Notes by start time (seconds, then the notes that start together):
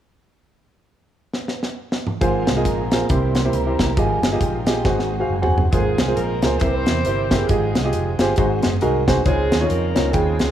1.33 snare
1.48 snare
1.63 snare
1.92 snare
2.07 mid tom
2.20 G#1 G#2 F3 A#3 C4 F4 G#4 A#4 C5, kick, closed hi-hat
2.47 C2, snare, closed hi-hat
2.56 F4 G#4 A#4 D#5
2.65 A#1 A#5, kick, closed hi-hat
2.92 F4 G#4 A#4 C5, snare, closed hi-hat
3.08 C2 C3 E3 G3 E4 G4 A#4 C5 C6, kick, closed hi-hat
3.35 snare, closed hi-hat
3.45 E4 G4 A#4 C5
3.53 C#2 A#5, closed hi-hat
3.66 E4 G4 A#4 C5
3.79 C2, kick, snare, closed hi-hat
3.96 G#1 G#2 F3 G#3 D#4 F4 G4 G#4 D#5 G#5, kick, closed hi-hat
4.22 G1, snare, closed hi-hat
4.32 F4 G4 G#4 D#5
4.40 A#1 G5, kick, closed hi-hat
4.67 F4 G4 G#4 D#5, snare, closed hi-hat
4.84 G#1 G#2 D#3 G#3 C4 F#4 G#4 C5 D#5 F#5, kick, snare
4.99 snare
5.20 F#4 G#4 C5 F5
5.29 F#1 G#5
5.42 F#4 G#4 C5 F#5, floor tom
5.58 floor tom
5.71 G#1 G#2 F3 G#3 A#3 C4 F4 G#4 A#4 C5, kick, closed hi-hat
5.98 C2, snare, closed hi-hat
6.08 F4 G#4 A#4 C5
6.15 A#1 A#3 D#4 F4 A#4, closed hi-hat
6.42 C#2 F4 G#4 A#4 C5, snare, closed hi-hat
6.59 C2 C3 E3 C4 E4 G4 A#4 B4 C5, kick, closed hi-hat
6.78 C5
6.86 E2, snare, closed hi-hat
7.05 G1 E4 G4 A#4 C5, closed hi-hat
7.31 E4 G4 G#4 A#4 C5, kick, snare, closed hi-hat
7.47 G#1 G#2 F3 G#3 C4 D#4 F4 G4 G#4 D#5 G5, kick, closed hi-hat
7.75 C2, snare, closed hi-hat
7.84 F4 G4 G#4 D#5
7.93 F1, closed hi-hat
8.19 G1 F4 G4 G#4 C5, snare, closed hi-hat
8.36 G#1 G#2 D#3 C4 D#4 F#4 G#4 C5, kick, closed hi-hat
8.62 F#1, snare, closed hi-hat
8.81 C2 D#4 F#4 G#4 A#4, closed hi-hat
9.07 D#4 F#4 G#4 C5, kick, snare, closed hi-hat
9.25 C#2 C#3 D#3 G#3 C4 C#4 D#4 F4 G#4 C5, kick, closed hi-hat
9.52 D#2, snare, closed hi-hat
9.60 C#4 D#4 F4 A4 C#5
9.67 F2 A#3 D#4 F4 A#4, closed hi-hat
9.95 C#2 C#4 D#4 F4 A#4, snare, closed hi-hat
10.10 D#2 C#3 G#3 C4 D#4 F4 G#4 G5, kick, closed hi-hat
10.39 C#2, snare, closed hi-hat